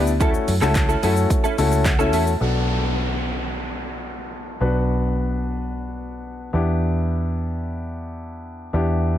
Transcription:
Already playing: fingered electric bass D2, grand piano B3 D4 E4 G4 D5
0.07 muted clean electric guitar stroke, shaker
0.20 grand piano A3 C#4 E4 F#4 A4, clean electric guitar C#4 E4 A4, kick, closed hi-hat, shaker
0.34 muted clean electric guitar stroke, shaker
0.48 fingered electric bass F#2, muted clean electric guitar stroke, open hi-hat, shaker
0.61 fingered electric bass C#2, grand piano A3 C#4 E4 F#4 A4, clean electric guitar C#4 E4 A4, clap, shaker
0.75 kick, clap, closed hi-hat, shaker
0.89 clean electric guitar C#4 E4 A4, shaker
1.02 fingered electric bass F#2, grand piano A3 C#4 E4 F#4 A4, clean electric guitar C#4 E4 A4, open hi-hat, shaker
1.17 shaker
1.30 muted clean electric guitar stroke, kick, closed hi-hat, shaker
1.44 clean electric guitar C#4 E4 A4, shaker
1.58 fingered electric bass C#2, grand piano A3 C#4 E4 F#4 A4 E5, muted clean electric guitar stroke, open hi-hat, shaker
1.72 muted clean electric guitar stroke, shaker
1.85 muted clean electric guitar stroke, kick, clap, closed hi-hat, shaker
1.99 grand piano A3 C#4 E4 F#4 A4, clean electric guitar C#4 E4 A4, shaker
2.13 fingered electric bass E2, clean electric guitar C#4 E4 A4, grand piano A5, open hi-hat, shaker
2.27 shaker
2.40 fingered electric bass B1, grand piano B3 D4 F#4 A4, downlifter
4.60 fingered electric bass B1, grand piano B3 D4 F#4 B4
6.53 fingered electric bass E2, grand piano B3 D4 E4 G4
8.73 fingered electric bass E2, grand piano B3 D4 E4 G4

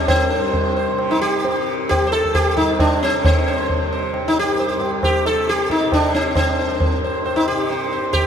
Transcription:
Already playing: tanpura C2 G2 C3
0.08 sitar C4, tabla na, tabla ge
0.30 sitar C5
0.37 tanpura G2
0.54 tabla tin, tabla ge
0.77 sitar C5
0.92 tanpura C3
0.99 tabla na
1.11 sitar D#4
1.21 sitar G4, tabla na
1.45 tanpura C3, tabla tin
1.89 sitar G4, tabla na, tabla ge
2.02 tanpura C2
2.07 sitar C5
2.12 sitar A4, tabla te
2.24 tabla ge
2.35 sitar G4, tabla na, tabla ge
2.56 tanpura G2, sitar D#4, tabla ge
2.79 sitar D4, tabla na, tabla ge
3.01 sitar C4, tabla te
3.12 tanpura C3
3.25 sitar C4, tabla na, tabla ge
3.47 sitar C5
3.68 tanpura C3, tabla tin, tabla ge
3.92 sitar C5
4.14 tabla na
4.23 tanpura C2
4.28 sitar D#4
4.39 sitar G4
4.59 sitar C5, tabla tin
4.76 tanpura G2
4.81 tabla na
5.03 sitar G4, tabla na, tabla ge
5.26 sitar A4, tabla te
5.31 tanpura C3
5.47 sitar G4, tabla te
5.58 tabla te
5.70 sitar D#4, tabla ke
5.81 tabla te
5.85 tanpura C3
5.92 sitar D4, tabla na, tabla ge
6.14 sitar C4, tabla te
6.35 sitar C4, tabla na, tabla ge
6.41 tanpura C2
6.59 sitar C5
6.80 tabla tin, tabla ge
6.95 tanpura G2
7.04 sitar C5
7.25 sitar C5, tabla na
7.36 sitar D#4
7.48 tanpura C3, sitar G4
7.70 sitar C5, tabla tin
7.92 sitar C5
8.01 tanpura C3
8.13 sitar G4, tabla na, tabla ge

